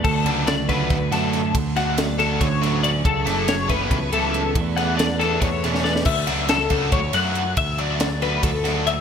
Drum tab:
CC |x-------------|--------------|--------------|--------------|
RD |--x-x-x-x-x-x-|x-x-x-x-x-x-x-|x-x-x-x-x-x-x-|x-x-x-x-x-x---|
SD |----o-o-o-o-o-|--o-o-o---o---|--o-o---------|--o-o-o---oooo|
BD |o-----o-o-----|o-------o-----|o-----o-o-----|o-------o-----|

CC |x-------------|--------------|
RD |--x-x-x-x-x-x-|x-x-x-x-x-x-x-|
SD |--o-o---------|----o-o---o---|
BD |o-----o-o-----|o-------o-----|